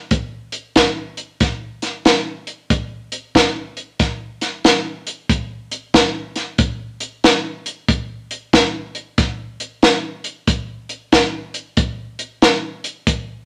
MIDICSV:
0, 0, Header, 1, 2, 480
1, 0, Start_track
1, 0, Tempo, 647948
1, 1044, Time_signature, 4, 2, 24, 8
1, 9964, End_track
2, 0, Start_track
2, 0, Title_t, "Drums"
2, 80, Note_on_c, 9, 42, 76
2, 83, Note_on_c, 9, 36, 98
2, 154, Note_off_c, 9, 42, 0
2, 157, Note_off_c, 9, 36, 0
2, 387, Note_on_c, 9, 42, 61
2, 461, Note_off_c, 9, 42, 0
2, 560, Note_on_c, 9, 42, 81
2, 562, Note_on_c, 9, 36, 75
2, 563, Note_on_c, 9, 38, 102
2, 634, Note_off_c, 9, 42, 0
2, 636, Note_off_c, 9, 36, 0
2, 637, Note_off_c, 9, 38, 0
2, 869, Note_on_c, 9, 42, 56
2, 943, Note_off_c, 9, 42, 0
2, 1040, Note_on_c, 9, 42, 83
2, 1043, Note_on_c, 9, 36, 110
2, 1043, Note_on_c, 9, 38, 32
2, 1114, Note_off_c, 9, 42, 0
2, 1117, Note_off_c, 9, 36, 0
2, 1117, Note_off_c, 9, 38, 0
2, 1350, Note_on_c, 9, 42, 58
2, 1353, Note_on_c, 9, 38, 30
2, 1424, Note_off_c, 9, 42, 0
2, 1427, Note_off_c, 9, 38, 0
2, 1521, Note_on_c, 9, 42, 78
2, 1524, Note_on_c, 9, 38, 105
2, 1595, Note_off_c, 9, 42, 0
2, 1598, Note_off_c, 9, 38, 0
2, 1830, Note_on_c, 9, 42, 58
2, 1904, Note_off_c, 9, 42, 0
2, 2002, Note_on_c, 9, 36, 99
2, 2002, Note_on_c, 9, 42, 78
2, 2076, Note_off_c, 9, 36, 0
2, 2076, Note_off_c, 9, 42, 0
2, 2311, Note_on_c, 9, 42, 58
2, 2385, Note_off_c, 9, 42, 0
2, 2482, Note_on_c, 9, 36, 71
2, 2484, Note_on_c, 9, 42, 70
2, 2487, Note_on_c, 9, 38, 104
2, 2556, Note_off_c, 9, 36, 0
2, 2558, Note_off_c, 9, 42, 0
2, 2561, Note_off_c, 9, 38, 0
2, 2791, Note_on_c, 9, 42, 52
2, 2865, Note_off_c, 9, 42, 0
2, 2960, Note_on_c, 9, 42, 74
2, 2962, Note_on_c, 9, 36, 102
2, 2963, Note_on_c, 9, 38, 30
2, 3034, Note_off_c, 9, 42, 0
2, 3036, Note_off_c, 9, 36, 0
2, 3037, Note_off_c, 9, 38, 0
2, 3270, Note_on_c, 9, 42, 57
2, 3273, Note_on_c, 9, 38, 30
2, 3344, Note_off_c, 9, 42, 0
2, 3347, Note_off_c, 9, 38, 0
2, 3441, Note_on_c, 9, 42, 77
2, 3444, Note_on_c, 9, 38, 104
2, 3515, Note_off_c, 9, 42, 0
2, 3518, Note_off_c, 9, 38, 0
2, 3753, Note_on_c, 9, 42, 61
2, 3827, Note_off_c, 9, 42, 0
2, 3922, Note_on_c, 9, 36, 106
2, 3924, Note_on_c, 9, 42, 78
2, 3996, Note_off_c, 9, 36, 0
2, 3998, Note_off_c, 9, 42, 0
2, 4233, Note_on_c, 9, 42, 63
2, 4307, Note_off_c, 9, 42, 0
2, 4400, Note_on_c, 9, 42, 81
2, 4401, Note_on_c, 9, 36, 72
2, 4403, Note_on_c, 9, 38, 105
2, 4475, Note_off_c, 9, 36, 0
2, 4475, Note_off_c, 9, 42, 0
2, 4477, Note_off_c, 9, 38, 0
2, 4709, Note_on_c, 9, 42, 59
2, 4711, Note_on_c, 9, 38, 30
2, 4783, Note_off_c, 9, 42, 0
2, 4786, Note_off_c, 9, 38, 0
2, 4877, Note_on_c, 9, 42, 84
2, 4880, Note_on_c, 9, 36, 111
2, 4951, Note_off_c, 9, 42, 0
2, 4954, Note_off_c, 9, 36, 0
2, 5188, Note_on_c, 9, 42, 62
2, 5262, Note_off_c, 9, 42, 0
2, 5363, Note_on_c, 9, 42, 82
2, 5366, Note_on_c, 9, 38, 110
2, 5437, Note_off_c, 9, 42, 0
2, 5440, Note_off_c, 9, 38, 0
2, 5674, Note_on_c, 9, 42, 64
2, 5748, Note_off_c, 9, 42, 0
2, 5841, Note_on_c, 9, 36, 101
2, 5844, Note_on_c, 9, 42, 76
2, 5916, Note_off_c, 9, 36, 0
2, 5918, Note_off_c, 9, 42, 0
2, 6154, Note_on_c, 9, 42, 57
2, 6229, Note_off_c, 9, 42, 0
2, 6321, Note_on_c, 9, 36, 73
2, 6321, Note_on_c, 9, 42, 80
2, 6324, Note_on_c, 9, 38, 109
2, 6395, Note_off_c, 9, 36, 0
2, 6395, Note_off_c, 9, 42, 0
2, 6398, Note_off_c, 9, 38, 0
2, 6629, Note_on_c, 9, 42, 55
2, 6703, Note_off_c, 9, 42, 0
2, 6800, Note_on_c, 9, 42, 77
2, 6801, Note_on_c, 9, 36, 111
2, 6802, Note_on_c, 9, 38, 34
2, 6874, Note_off_c, 9, 42, 0
2, 6875, Note_off_c, 9, 36, 0
2, 6877, Note_off_c, 9, 38, 0
2, 7112, Note_on_c, 9, 42, 55
2, 7186, Note_off_c, 9, 42, 0
2, 7279, Note_on_c, 9, 42, 78
2, 7282, Note_on_c, 9, 38, 106
2, 7353, Note_off_c, 9, 42, 0
2, 7356, Note_off_c, 9, 38, 0
2, 7587, Note_on_c, 9, 42, 58
2, 7661, Note_off_c, 9, 42, 0
2, 7759, Note_on_c, 9, 42, 76
2, 7760, Note_on_c, 9, 36, 104
2, 7833, Note_off_c, 9, 42, 0
2, 7834, Note_off_c, 9, 36, 0
2, 8070, Note_on_c, 9, 42, 56
2, 8144, Note_off_c, 9, 42, 0
2, 8240, Note_on_c, 9, 42, 75
2, 8242, Note_on_c, 9, 36, 78
2, 8243, Note_on_c, 9, 38, 108
2, 8314, Note_off_c, 9, 42, 0
2, 8316, Note_off_c, 9, 36, 0
2, 8317, Note_off_c, 9, 38, 0
2, 8550, Note_on_c, 9, 42, 57
2, 8624, Note_off_c, 9, 42, 0
2, 8718, Note_on_c, 9, 42, 87
2, 8721, Note_on_c, 9, 36, 110
2, 8792, Note_off_c, 9, 42, 0
2, 8795, Note_off_c, 9, 36, 0
2, 9030, Note_on_c, 9, 42, 64
2, 9104, Note_off_c, 9, 42, 0
2, 9201, Note_on_c, 9, 42, 84
2, 9204, Note_on_c, 9, 38, 106
2, 9275, Note_off_c, 9, 42, 0
2, 9278, Note_off_c, 9, 38, 0
2, 9513, Note_on_c, 9, 42, 63
2, 9587, Note_off_c, 9, 42, 0
2, 9682, Note_on_c, 9, 36, 99
2, 9683, Note_on_c, 9, 42, 77
2, 9756, Note_off_c, 9, 36, 0
2, 9757, Note_off_c, 9, 42, 0
2, 9964, End_track
0, 0, End_of_file